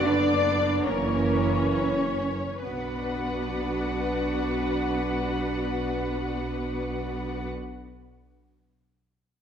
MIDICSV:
0, 0, Header, 1, 6, 480
1, 0, Start_track
1, 0, Key_signature, 2, "minor"
1, 0, Tempo, 1608579
1, 256, Tempo, 1791045
1, 736, Time_signature, 3, 2, 24, 8
1, 736, Tempo, 1709402
1, 1216, Tempo, 1680672
1, 2661, End_track
2, 0, Start_track
2, 0, Title_t, "Violin section"
2, 0, Program_c, 0, 48
2, 0, Note_on_c, 0, 74, 83
2, 247, Note_off_c, 0, 74, 0
2, 258, Note_on_c, 0, 70, 61
2, 497, Note_off_c, 0, 70, 0
2, 740, Note_on_c, 0, 78, 56
2, 2107, Note_off_c, 0, 78, 0
2, 2661, End_track
3, 0, Start_track
3, 0, Title_t, "Violin section"
3, 0, Program_c, 1, 48
3, 25, Note_on_c, 1, 74, 78
3, 259, Note_on_c, 1, 73, 70
3, 261, Note_off_c, 1, 74, 0
3, 728, Note_off_c, 1, 73, 0
3, 732, Note_on_c, 1, 71, 65
3, 2099, Note_off_c, 1, 71, 0
3, 2661, End_track
4, 0, Start_track
4, 0, Title_t, "Cello section"
4, 0, Program_c, 2, 48
4, 17, Note_on_c, 2, 62, 82
4, 256, Note_on_c, 2, 61, 83
4, 257, Note_off_c, 2, 62, 0
4, 736, Note_off_c, 2, 61, 0
4, 737, Note_on_c, 2, 59, 64
4, 2103, Note_off_c, 2, 59, 0
4, 2661, End_track
5, 0, Start_track
5, 0, Title_t, "Viola section"
5, 0, Program_c, 3, 48
5, 0, Note_on_c, 3, 50, 76
5, 0, Note_on_c, 3, 59, 82
5, 244, Note_off_c, 3, 59, 0
5, 255, Note_on_c, 3, 52, 74
5, 256, Note_off_c, 3, 50, 0
5, 256, Note_on_c, 3, 58, 73
5, 651, Note_off_c, 3, 52, 0
5, 651, Note_off_c, 3, 58, 0
5, 734, Note_on_c, 3, 66, 59
5, 736, Note_on_c, 3, 62, 61
5, 2101, Note_off_c, 3, 66, 0
5, 2103, Note_off_c, 3, 62, 0
5, 2661, End_track
6, 0, Start_track
6, 0, Title_t, "Double bass section"
6, 0, Program_c, 4, 48
6, 0, Note_on_c, 4, 30, 70
6, 247, Note_off_c, 4, 30, 0
6, 258, Note_on_c, 4, 30, 78
6, 645, Note_off_c, 4, 30, 0
6, 738, Note_on_c, 4, 35, 62
6, 2105, Note_off_c, 4, 35, 0
6, 2661, End_track
0, 0, End_of_file